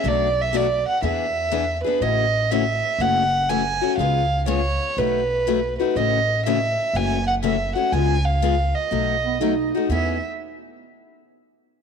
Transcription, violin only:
0, 0, Header, 1, 2, 480
1, 0, Start_track
1, 0, Key_signature, 4, "major"
1, 0, Tempo, 492611
1, 42, Time_signature, 4, 2, 24, 8
1, 11519, End_track
2, 0, Start_track
2, 0, Title_t, "Violin"
2, 0, Program_c, 0, 40
2, 76, Note_on_c, 0, 74, 80
2, 401, Note_on_c, 0, 76, 77
2, 416, Note_off_c, 0, 74, 0
2, 550, Note_on_c, 0, 74, 74
2, 564, Note_off_c, 0, 76, 0
2, 855, Note_off_c, 0, 74, 0
2, 860, Note_on_c, 0, 78, 78
2, 1000, Note_off_c, 0, 78, 0
2, 1022, Note_on_c, 0, 76, 79
2, 1768, Note_off_c, 0, 76, 0
2, 1794, Note_on_c, 0, 71, 75
2, 1966, Note_on_c, 0, 75, 82
2, 1981, Note_off_c, 0, 71, 0
2, 2445, Note_on_c, 0, 76, 83
2, 2459, Note_off_c, 0, 75, 0
2, 2931, Note_on_c, 0, 78, 97
2, 2945, Note_off_c, 0, 76, 0
2, 3404, Note_on_c, 0, 80, 90
2, 3419, Note_off_c, 0, 78, 0
2, 3878, Note_off_c, 0, 80, 0
2, 3884, Note_on_c, 0, 77, 84
2, 4329, Note_off_c, 0, 77, 0
2, 4375, Note_on_c, 0, 73, 82
2, 4849, Note_on_c, 0, 71, 93
2, 4864, Note_off_c, 0, 73, 0
2, 5635, Note_off_c, 0, 71, 0
2, 5641, Note_on_c, 0, 71, 72
2, 5810, Note_on_c, 0, 75, 82
2, 5825, Note_off_c, 0, 71, 0
2, 6286, Note_off_c, 0, 75, 0
2, 6296, Note_on_c, 0, 76, 80
2, 6782, Note_on_c, 0, 80, 92
2, 6796, Note_off_c, 0, 76, 0
2, 7082, Note_off_c, 0, 80, 0
2, 7088, Note_on_c, 0, 78, 81
2, 7160, Note_off_c, 0, 78, 0
2, 7249, Note_on_c, 0, 76, 77
2, 7540, Note_off_c, 0, 76, 0
2, 7563, Note_on_c, 0, 78, 77
2, 7721, Note_on_c, 0, 80, 82
2, 7735, Note_off_c, 0, 78, 0
2, 8040, Note_on_c, 0, 77, 81
2, 8055, Note_off_c, 0, 80, 0
2, 8523, Note_on_c, 0, 75, 73
2, 8537, Note_off_c, 0, 77, 0
2, 9482, Note_off_c, 0, 75, 0
2, 9662, Note_on_c, 0, 76, 66
2, 9948, Note_off_c, 0, 76, 0
2, 11519, End_track
0, 0, End_of_file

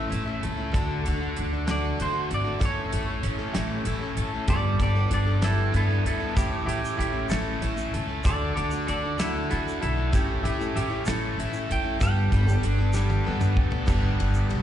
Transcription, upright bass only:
0, 0, Header, 1, 2, 480
1, 0, Start_track
1, 0, Tempo, 626305
1, 564, Time_signature, 6, 3, 24, 8
1, 11207, End_track
2, 0, Start_track
2, 0, Title_t, "Upright bass"
2, 0, Program_c, 0, 32
2, 99, Note_on_c, 0, 33, 73
2, 301, Note_off_c, 0, 33, 0
2, 345, Note_on_c, 0, 37, 78
2, 574, Note_off_c, 0, 37, 0
2, 574, Note_on_c, 0, 38, 75
2, 778, Note_off_c, 0, 38, 0
2, 824, Note_on_c, 0, 38, 88
2, 1023, Note_off_c, 0, 38, 0
2, 1064, Note_on_c, 0, 38, 90
2, 1472, Note_off_c, 0, 38, 0
2, 1535, Note_on_c, 0, 50, 86
2, 1739, Note_off_c, 0, 50, 0
2, 1769, Note_on_c, 0, 32, 73
2, 2003, Note_off_c, 0, 32, 0
2, 2003, Note_on_c, 0, 33, 83
2, 2212, Note_off_c, 0, 33, 0
2, 2248, Note_on_c, 0, 33, 84
2, 2455, Note_off_c, 0, 33, 0
2, 2484, Note_on_c, 0, 33, 87
2, 2692, Note_off_c, 0, 33, 0
2, 2728, Note_on_c, 0, 33, 77
2, 2935, Note_off_c, 0, 33, 0
2, 2962, Note_on_c, 0, 33, 78
2, 3172, Note_off_c, 0, 33, 0
2, 3199, Note_on_c, 0, 33, 76
2, 3435, Note_on_c, 0, 31, 85
2, 3446, Note_off_c, 0, 33, 0
2, 3647, Note_off_c, 0, 31, 0
2, 3675, Note_on_c, 0, 31, 78
2, 3888, Note_off_c, 0, 31, 0
2, 3918, Note_on_c, 0, 31, 84
2, 4337, Note_off_c, 0, 31, 0
2, 4399, Note_on_c, 0, 43, 75
2, 4610, Note_off_c, 0, 43, 0
2, 4639, Note_on_c, 0, 38, 83
2, 4850, Note_off_c, 0, 38, 0
2, 4878, Note_on_c, 0, 33, 86
2, 5089, Note_off_c, 0, 33, 0
2, 5111, Note_on_c, 0, 33, 81
2, 5326, Note_off_c, 0, 33, 0
2, 5357, Note_on_c, 0, 33, 90
2, 5569, Note_off_c, 0, 33, 0
2, 5599, Note_on_c, 0, 33, 79
2, 5810, Note_off_c, 0, 33, 0
2, 5841, Note_on_c, 0, 33, 75
2, 6051, Note_off_c, 0, 33, 0
2, 6090, Note_on_c, 0, 37, 85
2, 6297, Note_off_c, 0, 37, 0
2, 6321, Note_on_c, 0, 38, 90
2, 6532, Note_off_c, 0, 38, 0
2, 6578, Note_on_c, 0, 38, 79
2, 6781, Note_off_c, 0, 38, 0
2, 6813, Note_on_c, 0, 38, 85
2, 7226, Note_off_c, 0, 38, 0
2, 7299, Note_on_c, 0, 50, 86
2, 7502, Note_off_c, 0, 50, 0
2, 7534, Note_on_c, 0, 35, 74
2, 7739, Note_off_c, 0, 35, 0
2, 7767, Note_on_c, 0, 33, 93
2, 7975, Note_off_c, 0, 33, 0
2, 8010, Note_on_c, 0, 33, 85
2, 8217, Note_off_c, 0, 33, 0
2, 8246, Note_on_c, 0, 33, 90
2, 8454, Note_off_c, 0, 33, 0
2, 8492, Note_on_c, 0, 33, 88
2, 8698, Note_off_c, 0, 33, 0
2, 8739, Note_on_c, 0, 33, 79
2, 8941, Note_off_c, 0, 33, 0
2, 8976, Note_on_c, 0, 33, 85
2, 9180, Note_off_c, 0, 33, 0
2, 9204, Note_on_c, 0, 31, 93
2, 9413, Note_off_c, 0, 31, 0
2, 9444, Note_on_c, 0, 31, 98
2, 9653, Note_off_c, 0, 31, 0
2, 9692, Note_on_c, 0, 31, 86
2, 10105, Note_off_c, 0, 31, 0
2, 10176, Note_on_c, 0, 43, 90
2, 10379, Note_off_c, 0, 43, 0
2, 10398, Note_on_c, 0, 38, 85
2, 10636, Note_on_c, 0, 31, 92
2, 10648, Note_off_c, 0, 38, 0
2, 10801, Note_off_c, 0, 31, 0
2, 10885, Note_on_c, 0, 31, 89
2, 11046, Note_off_c, 0, 31, 0
2, 11123, Note_on_c, 0, 35, 89
2, 11207, Note_off_c, 0, 35, 0
2, 11207, End_track
0, 0, End_of_file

